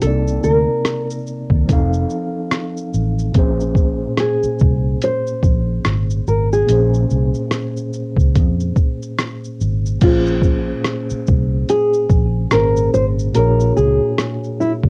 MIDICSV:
0, 0, Header, 1, 6, 480
1, 0, Start_track
1, 0, Key_signature, -5, "minor"
1, 0, Tempo, 833333
1, 12, Time_signature, 4, 2, 24, 8
1, 8577, End_track
2, 0, Start_track
2, 0, Title_t, "Nylon-string guitar"
2, 0, Program_c, 0, 24
2, 10, Note_on_c, 0, 69, 98
2, 250, Note_off_c, 0, 69, 0
2, 252, Note_on_c, 0, 70, 78
2, 709, Note_off_c, 0, 70, 0
2, 2419, Note_on_c, 0, 68, 80
2, 2899, Note_off_c, 0, 68, 0
2, 2902, Note_on_c, 0, 72, 96
2, 3614, Note_off_c, 0, 72, 0
2, 3617, Note_on_c, 0, 70, 78
2, 3758, Note_off_c, 0, 70, 0
2, 3760, Note_on_c, 0, 68, 77
2, 4215, Note_off_c, 0, 68, 0
2, 5781, Note_on_c, 0, 65, 91
2, 6736, Note_on_c, 0, 68, 94
2, 6765, Note_off_c, 0, 65, 0
2, 7208, Note_off_c, 0, 68, 0
2, 7210, Note_on_c, 0, 70, 105
2, 7450, Note_off_c, 0, 70, 0
2, 7453, Note_on_c, 0, 72, 96
2, 7517, Note_off_c, 0, 72, 0
2, 7689, Note_on_c, 0, 70, 105
2, 7927, Note_off_c, 0, 70, 0
2, 7929, Note_on_c, 0, 68, 93
2, 8409, Note_off_c, 0, 68, 0
2, 8411, Note_on_c, 0, 64, 91
2, 8476, Note_off_c, 0, 64, 0
2, 8577, End_track
3, 0, Start_track
3, 0, Title_t, "Tine electric piano"
3, 0, Program_c, 1, 4
3, 0, Control_c, 1, 64, 127
3, 0, Note_on_c, 1, 48, 59
3, 7, Note_on_c, 1, 60, 55
3, 17, Note_on_c, 1, 62, 45
3, 19, Control_c, 1, 64, 0
3, 29, Note_on_c, 1, 58, 53
3, 39, Note_on_c, 1, 74, 61
3, 54, Note_on_c, 1, 63, 56
3, 60, Note_off_c, 1, 62, 0
3, 130, Control_c, 1, 64, 127
3, 945, Note_off_c, 1, 48, 0
3, 950, Note_off_c, 1, 60, 0
3, 954, Note_on_c, 1, 53, 68
3, 961, Note_off_c, 1, 58, 0
3, 965, Note_on_c, 1, 60, 67
3, 966, Note_off_c, 1, 74, 0
3, 968, Note_off_c, 1, 63, 0
3, 975, Note_on_c, 1, 63, 70
3, 980, Control_c, 1, 64, 0
3, 986, Note_on_c, 1, 69, 67
3, 995, Note_on_c, 1, 77, 80
3, 1077, Control_c, 1, 64, 127
3, 1904, Note_off_c, 1, 53, 0
3, 1909, Note_off_c, 1, 60, 0
3, 1914, Note_off_c, 1, 63, 0
3, 1914, Note_on_c, 1, 46, 75
3, 1920, Note_off_c, 1, 69, 0
3, 1925, Note_off_c, 1, 77, 0
3, 1926, Note_on_c, 1, 58, 67
3, 1934, Note_on_c, 1, 60, 54
3, 1939, Control_c, 1, 64, 0
3, 1945, Note_on_c, 1, 68, 72
3, 1953, Note_on_c, 1, 72, 84
3, 1972, Note_on_c, 1, 61, 60
3, 1978, Note_off_c, 1, 60, 0
3, 2042, Control_c, 1, 64, 127
3, 3820, Note_off_c, 1, 46, 0
3, 3826, Note_off_c, 1, 58, 0
3, 3832, Note_on_c, 1, 46, 63
3, 3835, Note_off_c, 1, 68, 0
3, 3839, Note_on_c, 1, 58, 61
3, 3840, Note_off_c, 1, 72, 0
3, 3845, Note_off_c, 1, 61, 0
3, 3851, Note_on_c, 1, 61, 59
3, 3860, Note_on_c, 1, 68, 62
3, 3871, Note_on_c, 1, 72, 65
3, 5739, Note_off_c, 1, 46, 0
3, 5743, Note_off_c, 1, 58, 0
3, 5749, Note_off_c, 1, 61, 0
3, 5753, Note_off_c, 1, 68, 0
3, 5756, Note_on_c, 1, 46, 66
3, 5758, Note_off_c, 1, 72, 0
3, 5767, Note_on_c, 1, 58, 61
3, 5775, Note_on_c, 1, 61, 61
3, 5779, Control_c, 1, 64, 0
3, 5786, Note_on_c, 1, 68, 59
3, 5795, Note_on_c, 1, 72, 66
3, 5888, Control_c, 1, 64, 127
3, 7181, Note_off_c, 1, 46, 0
3, 7187, Note_off_c, 1, 58, 0
3, 7190, Note_off_c, 1, 61, 0
3, 7196, Note_off_c, 1, 68, 0
3, 7201, Note_off_c, 1, 72, 0
3, 7205, Note_on_c, 1, 46, 53
3, 7210, Note_on_c, 1, 58, 50
3, 7216, Note_on_c, 1, 61, 49
3, 7220, Note_on_c, 1, 68, 46
3, 7223, Note_on_c, 1, 72, 60
3, 7666, Note_off_c, 1, 46, 0
3, 7673, Note_off_c, 1, 58, 0
3, 7673, Note_on_c, 1, 46, 62
3, 7680, Note_on_c, 1, 58, 57
3, 7686, Note_on_c, 1, 62, 55
3, 7694, Note_off_c, 1, 61, 0
3, 7696, Note_off_c, 1, 68, 0
3, 7696, Note_on_c, 1, 66, 57
3, 7698, Note_off_c, 1, 72, 0
3, 7698, Control_c, 1, 64, 0
3, 7703, Note_on_c, 1, 68, 56
3, 7711, Note_on_c, 1, 73, 69
3, 7816, Control_c, 1, 64, 127
3, 8577, Note_off_c, 1, 46, 0
3, 8577, Note_off_c, 1, 58, 0
3, 8577, Note_off_c, 1, 62, 0
3, 8577, Note_off_c, 1, 66, 0
3, 8577, Note_off_c, 1, 68, 0
3, 8577, Note_off_c, 1, 73, 0
3, 8577, End_track
4, 0, Start_track
4, 0, Title_t, "Fingered electric bass"
4, 0, Program_c, 2, 33
4, 16, Note_on_c, 2, 36, 98
4, 216, Note_off_c, 2, 36, 0
4, 257, Note_on_c, 2, 38, 83
4, 376, Note_off_c, 2, 38, 0
4, 865, Note_on_c, 2, 39, 70
4, 975, Note_on_c, 2, 29, 96
4, 984, Note_off_c, 2, 39, 0
4, 1175, Note_off_c, 2, 29, 0
4, 1694, Note_on_c, 2, 33, 81
4, 1894, Note_off_c, 2, 33, 0
4, 1931, Note_on_c, 2, 34, 86
4, 2334, Note_off_c, 2, 34, 0
4, 2656, Note_on_c, 2, 36, 92
4, 2855, Note_off_c, 2, 36, 0
4, 3127, Note_on_c, 2, 34, 93
4, 3330, Note_off_c, 2, 34, 0
4, 3372, Note_on_c, 2, 32, 85
4, 3573, Note_off_c, 2, 32, 0
4, 3614, Note_on_c, 2, 32, 83
4, 3814, Note_off_c, 2, 32, 0
4, 3856, Note_on_c, 2, 34, 94
4, 4055, Note_off_c, 2, 34, 0
4, 4096, Note_on_c, 2, 36, 84
4, 4216, Note_off_c, 2, 36, 0
4, 4704, Note_on_c, 2, 37, 79
4, 4814, Note_on_c, 2, 41, 90
4, 4822, Note_off_c, 2, 37, 0
4, 5014, Note_off_c, 2, 41, 0
4, 5535, Note_on_c, 2, 32, 82
4, 5735, Note_off_c, 2, 32, 0
4, 5772, Note_on_c, 2, 34, 96
4, 6174, Note_off_c, 2, 34, 0
4, 6499, Note_on_c, 2, 36, 90
4, 6697, Note_off_c, 2, 36, 0
4, 6968, Note_on_c, 2, 34, 90
4, 7171, Note_off_c, 2, 34, 0
4, 7217, Note_on_c, 2, 32, 89
4, 7416, Note_off_c, 2, 32, 0
4, 7457, Note_on_c, 2, 32, 92
4, 7656, Note_off_c, 2, 32, 0
4, 7696, Note_on_c, 2, 34, 102
4, 7895, Note_off_c, 2, 34, 0
4, 7936, Note_on_c, 2, 37, 86
4, 8056, Note_off_c, 2, 37, 0
4, 8545, Note_on_c, 2, 38, 82
4, 8577, Note_off_c, 2, 38, 0
4, 8577, End_track
5, 0, Start_track
5, 0, Title_t, "Muted fingered electric bass strokes"
5, 2556, Note_on_c, 9, 29, 44
5, 2614, Note_off_c, 9, 29, 0
5, 6402, Note_on_c, 9, 29, 47
5, 6459, Note_off_c, 9, 29, 0
5, 8577, End_track
6, 0, Start_track
6, 0, Title_t, "Drums"
6, 9, Note_on_c, 9, 42, 60
6, 9, Note_on_c, 9, 82, 54
6, 67, Note_off_c, 9, 42, 0
6, 67, Note_off_c, 9, 82, 0
6, 158, Note_on_c, 9, 82, 38
6, 215, Note_off_c, 9, 82, 0
6, 251, Note_on_c, 9, 82, 38
6, 309, Note_off_c, 9, 82, 0
6, 489, Note_on_c, 9, 37, 83
6, 492, Note_on_c, 9, 42, 61
6, 492, Note_on_c, 9, 82, 53
6, 547, Note_off_c, 9, 37, 0
6, 550, Note_off_c, 9, 42, 0
6, 550, Note_off_c, 9, 82, 0
6, 635, Note_on_c, 9, 82, 51
6, 693, Note_off_c, 9, 82, 0
6, 730, Note_on_c, 9, 82, 43
6, 788, Note_off_c, 9, 82, 0
6, 864, Note_on_c, 9, 36, 77
6, 922, Note_off_c, 9, 36, 0
6, 973, Note_on_c, 9, 42, 61
6, 973, Note_on_c, 9, 82, 60
6, 974, Note_on_c, 9, 36, 87
6, 1031, Note_off_c, 9, 36, 0
6, 1031, Note_off_c, 9, 42, 0
6, 1031, Note_off_c, 9, 82, 0
6, 1113, Note_on_c, 9, 82, 42
6, 1171, Note_off_c, 9, 82, 0
6, 1209, Note_on_c, 9, 82, 46
6, 1266, Note_off_c, 9, 82, 0
6, 1448, Note_on_c, 9, 37, 109
6, 1448, Note_on_c, 9, 42, 60
6, 1448, Note_on_c, 9, 82, 58
6, 1506, Note_off_c, 9, 37, 0
6, 1506, Note_off_c, 9, 42, 0
6, 1506, Note_off_c, 9, 82, 0
6, 1596, Note_on_c, 9, 82, 42
6, 1654, Note_off_c, 9, 82, 0
6, 1692, Note_on_c, 9, 82, 50
6, 1750, Note_off_c, 9, 82, 0
6, 1837, Note_on_c, 9, 82, 41
6, 1895, Note_off_c, 9, 82, 0
6, 1927, Note_on_c, 9, 42, 58
6, 1927, Note_on_c, 9, 82, 55
6, 1930, Note_on_c, 9, 36, 111
6, 1985, Note_off_c, 9, 42, 0
6, 1985, Note_off_c, 9, 82, 0
6, 1988, Note_off_c, 9, 36, 0
6, 2076, Note_on_c, 9, 82, 35
6, 2133, Note_off_c, 9, 82, 0
6, 2160, Note_on_c, 9, 36, 86
6, 2169, Note_on_c, 9, 82, 37
6, 2218, Note_off_c, 9, 36, 0
6, 2226, Note_off_c, 9, 82, 0
6, 2404, Note_on_c, 9, 37, 92
6, 2407, Note_on_c, 9, 42, 61
6, 2407, Note_on_c, 9, 82, 52
6, 2462, Note_off_c, 9, 37, 0
6, 2465, Note_off_c, 9, 42, 0
6, 2465, Note_off_c, 9, 82, 0
6, 2552, Note_on_c, 9, 82, 50
6, 2610, Note_off_c, 9, 82, 0
6, 2643, Note_on_c, 9, 82, 45
6, 2657, Note_on_c, 9, 36, 90
6, 2701, Note_off_c, 9, 82, 0
6, 2714, Note_off_c, 9, 36, 0
6, 2890, Note_on_c, 9, 42, 62
6, 2890, Note_on_c, 9, 82, 55
6, 2947, Note_off_c, 9, 42, 0
6, 2947, Note_off_c, 9, 82, 0
6, 3036, Note_on_c, 9, 82, 45
6, 3093, Note_off_c, 9, 82, 0
6, 3127, Note_on_c, 9, 36, 93
6, 3129, Note_on_c, 9, 82, 47
6, 3184, Note_off_c, 9, 36, 0
6, 3187, Note_off_c, 9, 82, 0
6, 3368, Note_on_c, 9, 37, 101
6, 3368, Note_on_c, 9, 42, 59
6, 3368, Note_on_c, 9, 82, 67
6, 3426, Note_off_c, 9, 37, 0
6, 3426, Note_off_c, 9, 42, 0
6, 3426, Note_off_c, 9, 82, 0
6, 3514, Note_on_c, 9, 82, 47
6, 3572, Note_off_c, 9, 82, 0
6, 3613, Note_on_c, 9, 82, 47
6, 3671, Note_off_c, 9, 82, 0
6, 3759, Note_on_c, 9, 82, 41
6, 3816, Note_off_c, 9, 82, 0
6, 3850, Note_on_c, 9, 42, 62
6, 3850, Note_on_c, 9, 82, 60
6, 3908, Note_off_c, 9, 42, 0
6, 3908, Note_off_c, 9, 82, 0
6, 3997, Note_on_c, 9, 82, 38
6, 4054, Note_off_c, 9, 82, 0
6, 4091, Note_on_c, 9, 82, 38
6, 4149, Note_off_c, 9, 82, 0
6, 4229, Note_on_c, 9, 82, 45
6, 4287, Note_off_c, 9, 82, 0
6, 4326, Note_on_c, 9, 37, 90
6, 4329, Note_on_c, 9, 42, 53
6, 4329, Note_on_c, 9, 82, 55
6, 4383, Note_off_c, 9, 37, 0
6, 4387, Note_off_c, 9, 42, 0
6, 4387, Note_off_c, 9, 82, 0
6, 4474, Note_on_c, 9, 82, 51
6, 4531, Note_off_c, 9, 82, 0
6, 4569, Note_on_c, 9, 82, 41
6, 4627, Note_off_c, 9, 82, 0
6, 4704, Note_on_c, 9, 36, 69
6, 4720, Note_on_c, 9, 82, 42
6, 4761, Note_off_c, 9, 36, 0
6, 4778, Note_off_c, 9, 82, 0
6, 4813, Note_on_c, 9, 36, 85
6, 4813, Note_on_c, 9, 42, 53
6, 4813, Note_on_c, 9, 82, 55
6, 4870, Note_off_c, 9, 42, 0
6, 4870, Note_off_c, 9, 82, 0
6, 4871, Note_off_c, 9, 36, 0
6, 4954, Note_on_c, 9, 82, 41
6, 5012, Note_off_c, 9, 82, 0
6, 5046, Note_on_c, 9, 36, 97
6, 5047, Note_on_c, 9, 82, 47
6, 5104, Note_off_c, 9, 36, 0
6, 5105, Note_off_c, 9, 82, 0
6, 5198, Note_on_c, 9, 82, 42
6, 5256, Note_off_c, 9, 82, 0
6, 5291, Note_on_c, 9, 37, 114
6, 5291, Note_on_c, 9, 42, 64
6, 5291, Note_on_c, 9, 82, 59
6, 5349, Note_off_c, 9, 37, 0
6, 5349, Note_off_c, 9, 42, 0
6, 5349, Note_off_c, 9, 82, 0
6, 5438, Note_on_c, 9, 82, 45
6, 5496, Note_off_c, 9, 82, 0
6, 5533, Note_on_c, 9, 82, 46
6, 5590, Note_off_c, 9, 82, 0
6, 5678, Note_on_c, 9, 82, 39
6, 5736, Note_off_c, 9, 82, 0
6, 5767, Note_on_c, 9, 42, 59
6, 5767, Note_on_c, 9, 82, 61
6, 5769, Note_on_c, 9, 49, 92
6, 5770, Note_on_c, 9, 36, 117
6, 5824, Note_off_c, 9, 42, 0
6, 5824, Note_off_c, 9, 82, 0
6, 5827, Note_off_c, 9, 49, 0
6, 5828, Note_off_c, 9, 36, 0
6, 5913, Note_on_c, 9, 82, 37
6, 5971, Note_off_c, 9, 82, 0
6, 6001, Note_on_c, 9, 36, 86
6, 6008, Note_on_c, 9, 82, 44
6, 6058, Note_off_c, 9, 36, 0
6, 6066, Note_off_c, 9, 82, 0
6, 6247, Note_on_c, 9, 37, 99
6, 6250, Note_on_c, 9, 42, 53
6, 6250, Note_on_c, 9, 82, 63
6, 6305, Note_off_c, 9, 37, 0
6, 6308, Note_off_c, 9, 42, 0
6, 6308, Note_off_c, 9, 82, 0
6, 6393, Note_on_c, 9, 82, 54
6, 6450, Note_off_c, 9, 82, 0
6, 6491, Note_on_c, 9, 82, 45
6, 6499, Note_on_c, 9, 36, 86
6, 6549, Note_off_c, 9, 82, 0
6, 6557, Note_off_c, 9, 36, 0
6, 6732, Note_on_c, 9, 42, 56
6, 6732, Note_on_c, 9, 82, 54
6, 6790, Note_off_c, 9, 42, 0
6, 6790, Note_off_c, 9, 82, 0
6, 6874, Note_on_c, 9, 82, 47
6, 6931, Note_off_c, 9, 82, 0
6, 6967, Note_on_c, 9, 36, 92
6, 6968, Note_on_c, 9, 82, 45
6, 7025, Note_off_c, 9, 36, 0
6, 7026, Note_off_c, 9, 82, 0
6, 7206, Note_on_c, 9, 37, 118
6, 7206, Note_on_c, 9, 42, 66
6, 7206, Note_on_c, 9, 82, 65
6, 7264, Note_off_c, 9, 37, 0
6, 7264, Note_off_c, 9, 42, 0
6, 7264, Note_off_c, 9, 82, 0
6, 7353, Note_on_c, 9, 82, 49
6, 7410, Note_off_c, 9, 82, 0
6, 7453, Note_on_c, 9, 82, 45
6, 7511, Note_off_c, 9, 82, 0
6, 7597, Note_on_c, 9, 82, 41
6, 7655, Note_off_c, 9, 82, 0
6, 7687, Note_on_c, 9, 42, 62
6, 7687, Note_on_c, 9, 82, 61
6, 7745, Note_off_c, 9, 42, 0
6, 7745, Note_off_c, 9, 82, 0
6, 7834, Note_on_c, 9, 82, 45
6, 7891, Note_off_c, 9, 82, 0
6, 7931, Note_on_c, 9, 82, 41
6, 7989, Note_off_c, 9, 82, 0
6, 8170, Note_on_c, 9, 37, 100
6, 8173, Note_on_c, 9, 42, 55
6, 8173, Note_on_c, 9, 82, 55
6, 8227, Note_off_c, 9, 37, 0
6, 8231, Note_off_c, 9, 42, 0
6, 8231, Note_off_c, 9, 82, 0
6, 8317, Note_on_c, 9, 82, 54
6, 8374, Note_off_c, 9, 82, 0
6, 8413, Note_on_c, 9, 82, 46
6, 8471, Note_off_c, 9, 82, 0
6, 8545, Note_on_c, 9, 36, 73
6, 8577, Note_off_c, 9, 36, 0
6, 8577, End_track
0, 0, End_of_file